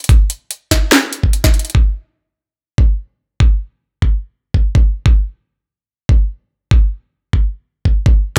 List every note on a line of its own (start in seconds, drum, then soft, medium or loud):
0.04 closed hi-hat medium
0.09 kick loud
0.09 closed hi-hat medium
0.30 closed hi-hat medium
0.51 closed hi-hat medium
0.71 kick medium
0.71 snare medium
0.71 closed hi-hat medium
0.92 snare loud
0.92 closed hi-hat medium
1.13 closed hi-hat medium
1.23 kick medium
1.33 closed hi-hat medium
1.44 kick loud
1.44 snare medium
1.54 closed hi-hat medium
1.59 closed hi-hat medium
1.65 closed hi-hat medium
1.70 closed hi-hat medium
1.75 kick loud
2.78 kick medium
3.40 kick loud
4.02 kick medium
4.54 kick medium
4.75 kick loud
5.06 kick loud
6.09 kick loud
6.71 kick loud
7.33 kick medium
7.85 kick medium
8.06 kick loud